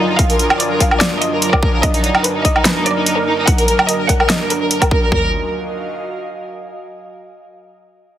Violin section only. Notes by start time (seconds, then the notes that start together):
0.09 D#4
0.19 F5
0.30 A#4
0.39 A#4
0.50 A#4
0.60 D5
0.71 A#4
0.80 F5
0.91 A#4
1.01 D5
1.12 A#4
1.21 D#5
1.32 A#4
1.42 A#4
1.53 D5
1.63 A#4
1.74 A#4
1.83 D#5
1.94 D#4
2.04 D#4
2.14 D#4
2.24 B4
2.35 D#4
2.45 D#5
2.56 D#4
2.65 B4
2.76 D#4
2.86 D5
2.97 D#4
3.06 D#4
3.17 A#4
3.27 D#4
3.38 D#4
3.47 F#5
3.58 A#4
3.68 A#4
3.79 A#4
3.89 D#5
3.99 A#4
4.09 F#5
4.20 A#4
4.30 D#5
4.41 A#4
4.50 A#4
4.61 A#4
4.71 A#4
4.82 A#4
4.91 A#4
5.02 A#4
5.12 A#4